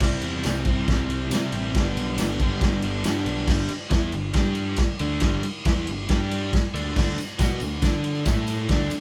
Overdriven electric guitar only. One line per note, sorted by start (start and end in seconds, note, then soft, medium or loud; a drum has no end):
0.00 0.64 C3 medium
0.00 0.69 G3 loud
0.00 0.66 C4 loud
0.00 0.66 E4 loud
0.67 1.30 C3 medium
0.67 1.33 G3 medium
0.67 1.31 C4 medium
0.67 1.31 E4 medium
1.31 1.74 C3 medium
1.31 1.77 G3 medium
1.31 1.75 C4 medium
1.31 1.75 E4 medium
1.76 2.39 G2 medium
1.76 2.40 D3 medium
1.76 2.40 G3 loud
1.76 2.41 B3 loud
1.76 2.40 D4 medium
2.41 3.05 G2 medium
2.41 3.05 D3 medium
2.41 3.06 G3 medium
2.41 3.05 B3 medium
2.41 3.05 D4 medium
3.06 3.47 G2 medium
3.06 3.48 D3 medium
3.06 3.49 G3 medium
3.06 3.49 B3 medium
3.06 3.50 D4 medium
3.48 3.69 G2 loud
3.48 3.70 D3 loud
3.48 3.70 G3 loud
3.70 muted overdriven electric guitar stroke medium
3.90 4.12 E3 medium
3.90 4.12 B3 loud
3.90 4.13 E4 medium
4.13 4.31 G2 medium
4.13 4.31 D3 medium
4.34 4.78 G3 loud
4.34 4.78 D4 loud
4.34 4.79 G4 loud
4.78 muted overdriven electric guitar stroke medium
5.00 5.22 D3 loud
5.00 5.22 A3 loud
5.00 5.22 D4 loud
5.23 5.43 G2 medium
5.23 5.44 D3 loud
5.23 5.45 G3 loud
5.44 muted overdriven electric guitar stroke medium
5.66 5.87 E3 loud
5.66 5.87 B3 loud
5.66 5.87 E4 loud
5.89 6.06 G2 medium
5.89 6.06 D3 medium
6.10 6.53 G3 loud
6.10 6.53 D4 loud
6.10 6.53 G4 loud
6.54 muted overdriven electric guitar stroke medium
6.74 6.95 D3 loud
6.74 6.95 A3 loud
6.74 6.96 D4 loud
6.96 7.18 D3 loud
6.96 7.18 A3 loud
6.96 7.18 D4 loud
7.19 muted overdriven electric guitar stroke medium
7.39 7.60 B3 loud
7.39 7.61 F#4 loud
7.39 7.61 B4 loud
7.60 7.79 D3 medium
7.60 7.79 A3 medium
7.82 8.25 D4 loud
7.82 8.26 A4 loud
7.82 8.26 D5 loud
8.26 8.69 A3 loud
8.26 8.70 E4 loud
8.26 8.70 A4 loud
8.70 8.92 D3 medium
8.70 8.92 A3 medium
8.70 8.92 D4 loud
8.93 muted overdriven electric guitar stroke medium